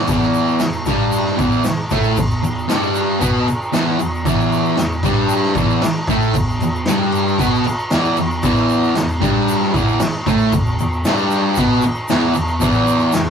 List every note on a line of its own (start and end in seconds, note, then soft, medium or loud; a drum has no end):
0.07 0.59 E2 medium
0.07 0.60 E3 loud
0.07 kick loud
0.07 crash medium
0.07 shaker loud
0.22 shaker soft
0.33 crash soft
0.33 shaker medium
0.48 shaker soft
0.59 0.82 E2 medium
0.59 snare loud
0.59 crash medium
0.59 shaker loud
0.73 shaker soft
0.86 1.38 G2 medium
0.86 1.38 G3 loud
0.86 kick loud
0.86 snare soft
0.86 crash medium
0.86 shaker medium
1.12 crash medium
1.12 shaker loud
1.26 snare soft
1.38 1.64 E2 medium
1.38 1.65 E3 medium
1.38 kick loud
1.38 crash medium
1.38 shaker medium
1.52 shaker soft
1.64 muted distorted electric guitar stroke medium
1.64 snare loud
1.64 crash medium
1.64 shaker loud
1.90 2.16 A2 loud
1.90 2.17 A3 loud
1.90 kick loud
1.90 crash medium
1.90 shaker medium
2.03 shaker soft
2.17 2.38 E2 medium
2.17 kick loud
2.17 crash medium
2.17 shaker medium
2.31 shaker soft
2.43 2.64 E2 medium
2.43 crash medium
2.43 shaker medium
2.59 shaker soft
2.68 3.20 G2 medium
2.68 3.20 G3 medium
2.68 snare loud
2.68 crash medium
2.68 shaker loud
2.83 shaker soft
2.95 crash medium
2.95 shaker medium
3.19 3.46 B2 loud
3.19 3.46 B3 loud
3.19 kick medium
3.19 crash medium
3.19 shaker loud
3.47 muted distorted electric guitar stroke medium
3.47 crash medium
3.47 shaker medium
3.62 shaker soft
3.73 3.98 E2 loud
3.73 3.99 E3 loud
3.73 snare loud
3.73 crash medium
3.73 shaker medium
3.99 4.20 E2 medium
3.99 crash medium
3.99 shaker medium
4.14 shaker soft
4.25 4.76 E2 loud
4.25 4.78 E3 loud
4.25 kick loud
4.25 crash medium
4.25 shaker medium
4.40 shaker soft
4.52 crash medium
4.52 shaker medium
4.65 shaker soft
4.77 4.99 E2 medium
4.77 snare loud
4.77 crash medium
4.77 shaker medium
4.92 shaker soft
5.03 5.55 G2 loud
5.03 5.56 G3 loud
5.03 kick loud
5.03 snare soft
5.03 crash medium
5.03 shaker medium
5.29 crash medium
5.29 shaker medium
5.42 snare soft
5.55 5.81 E2 medium
5.55 5.82 E3 medium
5.55 kick loud
5.55 crash medium
5.55 shaker medium
5.70 shaker soft
5.82 muted distorted electric guitar stroke medium
5.82 snare loud
5.82 crash medium
5.82 shaker medium
6.07 6.34 A2 loud
6.07 6.35 A3 loud
6.07 kick loud
6.07 crash medium
6.07 shaker medium
6.22 shaker soft
6.34 6.56 E2 medium
6.34 kick medium
6.34 crash medium
6.34 shaker medium
6.50 shaker soft
6.60 6.82 E2 medium
6.60 crash medium
6.60 shaker medium
6.75 shaker soft
6.86 7.39 G2 medium
6.86 7.39 G3 loud
6.86 snare loud
6.86 crash medium
6.86 shaker medium
7.12 crash medium
7.12 shaker medium
7.28 shaker soft
7.38 7.64 B2 loud
7.38 7.65 B3 loud
7.38 kick medium
7.38 crash medium
7.38 shaker loud
7.55 shaker soft
7.64 muted distorted electric guitar stroke medium
7.64 crash medium
7.64 shaker medium
7.79 shaker soft
7.91 8.17 E2 medium
7.91 8.17 E3 loud
7.91 snare loud
7.91 crash medium
7.91 shaker medium
8.05 shaker soft
8.16 8.39 E2 medium
8.16 crash medium
8.16 shaker medium
8.31 shaker soft
8.43 8.95 E2 loud
8.43 8.95 E3 loud
8.43 kick loud
8.43 crash medium
8.43 shaker medium
8.56 shaker soft
8.69 crash medium
8.69 shaker medium
8.84 shaker soft
8.95 9.17 E2 medium
8.95 snare loud
8.95 crash medium
8.95 shaker medium
9.09 shaker soft
9.21 9.72 G2 loud
9.21 9.73 G3 loud
9.21 kick loud
9.21 snare soft
9.21 crash medium
9.21 shaker medium
9.48 crash medium
9.48 shaker medium
9.61 snare soft
9.72 9.99 E2 medium
9.72 10.00 E3 medium
9.72 kick loud
9.72 crash medium
9.72 shaker medium
9.88 shaker soft
10.00 muted distorted electric guitar stroke medium
10.00 snare loud
10.00 crash loud
10.00 shaker medium
10.26 10.52 A2 loud
10.26 10.52 A3 loud
10.26 kick loud
10.26 crash medium
10.26 shaker medium
10.39 shaker soft
10.52 10.74 E2 medium
10.52 kick medium
10.52 crash medium
10.52 shaker loud
10.66 shaker soft
10.79 11.01 E2 medium
10.79 crash medium
10.79 shaker medium
10.92 shaker soft
11.05 11.57 G2 medium
11.05 11.58 G3 loud
11.05 snare loud
11.05 crash medium
11.05 shaker medium
11.18 shaker soft
11.31 crash medium
11.31 shaker medium
11.55 11.83 B2 loud
11.55 11.83 B3 loud
11.55 kick loud
11.55 crash medium
11.55 shaker medium
11.82 muted distorted electric guitar stroke medium
11.82 crash medium
11.82 shaker medium
11.95 shaker soft
12.08 12.34 E2 loud
12.08 12.35 E3 loud
12.08 snare loud
12.08 crash medium
12.08 shaker medium
12.34 12.56 E2 medium
12.34 crash medium
12.34 shaker medium
12.48 shaker soft
12.60 13.12 E2 loud
12.60 13.13 E3 loud
12.60 kick loud
12.60 crash medium
12.60 shaker loud
12.73 shaker soft
12.87 crash medium
12.87 shaker medium
12.99 shaker soft
13.12 13.30 E2 medium
13.12 snare loud
13.12 crash medium
13.12 shaker loud